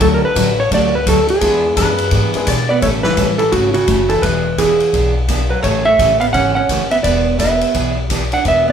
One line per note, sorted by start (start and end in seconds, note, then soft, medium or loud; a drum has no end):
0.00 0.21 D2 medium
0.00 0.22 D3 medium
0.00 0.20 F#3 medium
0.00 0.22 F#3 medium
0.00 0.21 A3 medium
0.00 0.23 A3 medium
0.00 0.21 D4 medium
0.00 0.23 D4 medium
0.00 0.21 F#4 medium
0.00 0.23 F#4 medium
0.00 0.21 A4 medium
0.00 0.07 A4 medium
0.00 kick soft
0.00 ride medium
0.14 0.23 A#4 medium
0.23 0.60 B4 loud
0.23 muted upright bass stroke soft
0.35 0.70 A1 loud
0.35 0.47 D3 medium
0.35 0.56 F#3 medium
0.35 0.47 F#3 medium
0.35 0.56 A3 soft
0.35 0.47 A3 medium
0.35 0.56 D4 medium
0.35 0.48 D4 medium
0.35 0.56 F#4 medium
0.35 0.48 F#4 medium
0.35 0.56 A4 medium
0.35 kick soft
0.35 hi-hat pedal medium
0.35 ride medium
0.60 0.73 C#5 loud
0.71 1.06 C#2 medium
0.71 0.93 D3 medium
0.71 0.93 F#3 medium
0.71 0.93 A3 medium
0.71 0.93 D4 medium
0.71 0.93 F#4 medium
0.71 0.96 D5 loud
0.71 kick soft
0.71 ride medium
0.95 1.08 B4 medium
1.06 1.41 D2 medium
1.06 1.18 D3 medium
1.06 1.18 F#3 medium
1.06 1.18 A3 medium
1.06 1.19 D4 medium
1.06 1.19 F#4 medium
1.06 1.30 A4 medium
1.06 kick soft
1.06 hi-hat pedal medium
1.06 ride medium
1.28 2.44 G#4 medium
1.28 ride medium
1.41 1.76 E2 medium
1.41 1.63 E3 medium
1.41 1.94 G#3 medium
1.41 1.94 B3 medium
1.41 1.63 B3 medium
1.41 1.94 D4 medium
1.41 1.64 D4 medium
1.41 1.94 E4 medium
1.41 1.95 G#4 medium
1.41 1.64 G#4 medium
1.41 kick soft
1.41 ride medium
1.77 2.11 F#2 loud
1.77 1.88 E3 medium
1.77 1.88 B3 medium
1.77 1.89 D4 medium
1.77 1.89 G#4 medium
1.77 2.45 B4 medium
1.77 kick soft
1.77 hi-hat pedal medium
1.77 ride medium
1.98 ride medium
2.11 2.32 G#2 medium
2.11 2.33 E3 medium
2.11 2.33 B3 medium
2.11 2.34 D4 medium
2.11 2.34 G#4 medium
2.11 kick soft
2.11 ride medium
2.34 2.46 G#3 medium
2.34 2.46 B3 medium
2.34 2.46 D4 medium
2.34 2.46 E4 medium
2.34 2.46 G#4 medium
2.34 muted upright bass stroke soft
2.34 ride medium
2.47 2.81 B2 medium
2.47 2.59 E3 medium
2.47 2.59 B3 medium
2.47 2.59 D4 medium
2.47 2.59 G#4 medium
2.47 2.69 D5 medium
2.47 kick soft
2.47 hi-hat pedal medium
2.47 ride medium
2.69 2.82 B3 medium
2.69 2.82 D5 medium
2.82 3.11 A1 medium
2.82 3.04 C#3 medium
2.82 3.04 E3 medium
2.82 2.88 A3 medium
2.82 3.04 A3 medium
2.82 3.04 C#4 medium
2.82 3.04 A4 medium
2.82 2.89 C#5 medium
2.82 kick soft
2.82 ride medium
3.03 3.37 E3 medium
3.03 3.38 B4 loud
3.03 snare soft
3.17 3.47 A1 medium
3.17 3.29 C#3 medium
3.17 3.29 E3 medium
3.17 3.29 A3 medium
3.17 3.29 C#4 medium
3.17 3.29 A4 medium
3.17 kick soft
3.17 hi-hat pedal medium
3.17 ride medium
3.38 3.52 E3 medium
3.38 3.53 A4 medium
3.38 ride soft
3.52 3.83 G#1 medium
3.52 3.73 C#3 medium
3.52 3.74 C#3 medium
3.52 3.74 E3 medium
3.52 3.74 A3 medium
3.52 3.74 C#4 medium
3.52 3.73 F#4 medium
3.52 3.75 A4 medium
3.52 kick soft
3.52 ride medium
3.74 4.07 C#3 medium
3.74 4.11 F#4 medium
3.74 ride soft
3.87 4.18 F#1 medium
3.87 3.99 C#3 medium
3.87 3.99 E3 medium
3.87 3.99 A3 medium
3.87 4.00 C#4 medium
3.87 4.00 A4 medium
3.87 kick soft
3.87 hi-hat pedal medium
3.87 ride medium
4.09 4.21 E3 medium
4.09 4.23 A4 medium
4.09 ride soft
4.22 4.79 E1 medium
4.22 4.57 E3 medium
4.22 4.45 E3 medium
4.22 4.45 B3 medium
4.22 4.45 D4 medium
4.22 4.45 G#4 medium
4.22 4.59 B4 medium
4.22 kick soft
4.22 ride medium
4.58 5.12 E3 medium
4.58 4.70 E3 medium
4.58 4.70 B3 medium
4.58 4.70 D4 medium
4.58 5.12 G#4 medium
4.58 4.70 G#4 medium
4.58 kick soft
4.58 hi-hat pedal medium
4.58 ride medium
4.80 ride soft
4.92 5.50 B1 medium
4.92 5.15 E3 medium
4.92 5.15 B3 soft
4.92 5.15 D4 medium
4.92 5.15 G#4 medium
4.92 kick soft
4.92 ride medium
5.28 5.40 E3 medium
5.28 5.41 B3 medium
5.28 5.41 D4 medium
5.28 5.41 G#4 medium
5.28 kick soft
5.28 hi-hat pedal medium
5.28 ride medium
5.49 5.62 F#3 medium
5.49 5.63 B4 medium
5.62 5.92 A1 medium
5.62 5.86 C#3 medium
5.62 5.86 E3 medium
5.62 5.84 A3 medium
5.62 5.86 A3 medium
5.62 5.86 C#4 medium
5.62 5.86 G#4 medium
5.62 5.87 C#5 medium
5.62 kick soft
5.62 ride medium
5.85 6.19 A3 medium
5.85 6.20 E5 loud
5.99 6.29 A1 medium
5.99 6.11 C#3 medium
5.99 6.11 E3 medium
5.99 6.11 A3 medium
5.99 6.11 C#4 medium
5.99 6.11 G#4 medium
5.99 kick soft
5.99 hi-hat pedal medium
5.99 ride medium
6.20 6.25 B3 medium
6.20 6.26 F5 medium
6.20 ride soft
6.33 6.64 G#1 medium
6.33 6.56 C#3 medium
6.33 6.57 E3 medium
6.33 6.57 A3 medium
6.33 6.55 C#4 medium
6.33 6.57 C#4 medium
6.33 6.57 G#4 medium
6.33 6.54 F#5 loud
6.33 kick soft
6.33 ride medium
6.55 6.89 C#4 medium
6.55 6.91 F#5 loud
6.69 6.99 F#1 medium
6.69 6.81 C#3 medium
6.69 6.81 E3 medium
6.69 6.81 A3 medium
6.69 6.82 C#4 medium
6.69 6.82 G#4 medium
6.69 kick soft
6.69 hi-hat pedal medium
6.69 ride medium
6.91 6.96 B3 medium
6.91 6.96 E5 medium
6.91 ride soft
7.03 7.61 E1 medium
7.03 7.26 E3 medium
7.03 7.37 B3 medium
7.03 7.26 B3 medium
7.03 7.26 D4 medium
7.03 7.27 G#4 medium
7.03 7.40 D5 medium
7.03 kick soft
7.03 ride medium
7.39 7.51 E3 medium
7.39 7.93 B3 medium
7.39 7.51 B3 medium
7.39 7.51 D4 medium
7.39 7.51 G#4 medium
7.39 7.94 E5 medium
7.39 kick soft
7.39 hi-hat pedal medium
7.39 ride medium
7.61 ride soft
7.74 8.31 B1 medium
7.74 7.97 E3 medium
7.74 7.97 B3 medium
7.74 7.97 D4 medium
7.74 7.97 G#4 medium
7.74 kick soft
7.74 ride medium
8.10 8.22 E3 medium
8.10 8.22 B3 medium
8.10 8.22 D4 medium
8.10 8.22 G#4 medium
8.10 kick soft
8.10 hi-hat pedal medium
8.10 ride medium
8.32 8.46 D4 medium
8.32 8.47 F#5 medium
8.32 ride soft
8.45 8.72 E1 medium
8.45 8.68 E3 medium
8.45 8.67 B3 medium
8.45 8.68 B3 medium
8.45 8.68 D4 medium
8.45 8.68 G#4 medium
8.45 8.70 E5 medium
8.45 kick soft
8.45 ride medium
8.68 8.72 B3 medium